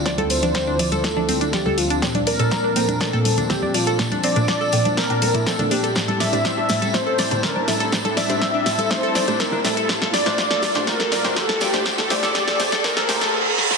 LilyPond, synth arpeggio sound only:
\new Staff \with { instrumentName = "Synth arpeggio sound" } { \time 4/4 \key a \phrygian \tempo 4 = 122 d''16 a'16 r16 d'16 c'16 d'16 d''16 a'16 r16 d'16 c'16 d'16 d''16 a'16 r16 d'16 | c'16 d'16 d''16 a'16 r16 d'16 c'16 d'16 d''16 a'16 r16 d'16 c'16 d'16 d''16 a'16 | r16 d'16 c'16 d'16 d''16 a'16 r16 d'16 c'16 d'16 a'16 e'16 c'16 d'16 d'16 a'16 | r16 a'16 d''16 d'16 c'16 d'16 r16 a'16 r16 a'16 d''16 d'16 c'16 d'16 r16 a'16 |
r16 a'16 d''16 d'16 c'16 d'16 r16 a'16 r16 a'16 d''16 d'16 c'16 d'16 r16 a'16 | r16 a'16 d''16 d'16 r16 a'16 d''16 d'16 r16 a'16 d''16 d'16 r16 a'16 d''16 d'16 | r16 a'16 r16 a'16 r16 a'16 r16 a'16 r16 a'16 r16 a'16 r4 | }